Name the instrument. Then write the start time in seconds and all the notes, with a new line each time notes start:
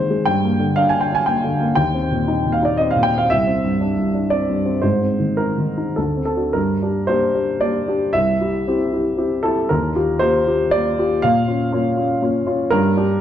upright piano
Already playing: G#2 D#3 G#3 C4 G#4 C5
0.10 G#3
0.25 G2 G5
0.44 A#3
0.60 D3
0.76 D4 F5
0.89 G#5
0.95 D3
1.01 G5
1.12 D4 G#5
1.26 A#3 G5
1.44 D3
1.60 A#3
1.75 D#2 G5
1.94 C4
2.12 A#2
2.28 D#4
2.45 A#2
2.52 F5
2.62 D#4 D5
2.77 C4 D#5
2.91 F5
2.96 A#2
3.03 G5
3.14 C4 F5
3.30 C2 E5
3.47 C4
3.64 G2
3.81 D4
3.97 G2
4.14 D4
4.30 C4 D5
4.49 G2
4.66 C4
4.82 G#2 C5
5.02 C4
5.20 D#3
5.37 D#4 A#4
5.58 D#3
5.77 D#4
5.96 D2 A4
6.17 C4
6.25 A4
6.37 D4 F#4
6.53 G2 A#4
6.82 D4 G4
7.07 A#3 D4 G4 C5
7.35 D4 G4
7.61 A#3 D4 G4 D5
7.88 D4 G4
8.13 C2 E5
8.41 E4 G4
8.67 C4 E4 G4
8.93 E4 G4
9.17 C4 E4 G4
9.43 E4 G4 A4
9.69 D#2 A#4
9.96 F4 G4
10.19 A#3 F4 G4 C5
10.47 F4 G4
10.71 A#3 F4 G4 D5
10.99 F4 G4
11.22 A#2 F5
11.48 C#4 F4
11.72 A#3 C#4 F4
11.97 C#4 F4
12.22 A#3 C#4 F4
12.46 C#4 F4
12.70 G2 A#4
12.97 D4 G4